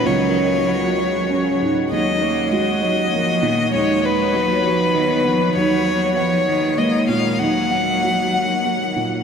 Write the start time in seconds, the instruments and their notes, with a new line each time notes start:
0.05 felt piano C#2, cello F#3, ambient pad G#3 C#5 F#5, violin C#5
0.36 felt piano C#5
0.68 felt piano F#4
0.98 felt piano C#5
1.30 felt piano C#4
1.61 felt piano G#2
1.91 felt piano D#2, cello F#3, ambient pad A#3, violin D#5
2.22 cello A#3, felt piano C#5
2.51 cello G#3, felt piano F#4, violin D#5
2.82 cello F#3, felt piano C#5
3.12 cello F3, felt piano A#3
3.42 felt piano A#2, cello D#3
3.73 felt piano D#2, cello G#3, ambient pad B3, violin C#5
4.03 violin B4, felt piano C#5
4.34 cello F#3, felt piano F#4
4.65 cello F3, felt piano C#5
4.94 cello D#3, felt piano B3
5.25 felt piano D#3, cello F3
5.56 felt piano D#2, cello F#3, ambient pad A#3 D#4 C#5, violin C#5
5.86 felt piano C#5
6.16 cello F3, violin C#5, felt piano F#5
6.47 cello D#3, felt piano C#5
6.78 cello G#3, felt piano A#3, violin D#5
7.08 felt piano A#2, violin F5
7.39 felt piano D#2, cello F#3, violin F#5, ambient pad F#5
7.71 felt piano F#5
8.03 felt piano F#4
8.34 felt piano F#5
8.64 felt piano A#3
8.96 felt piano A#2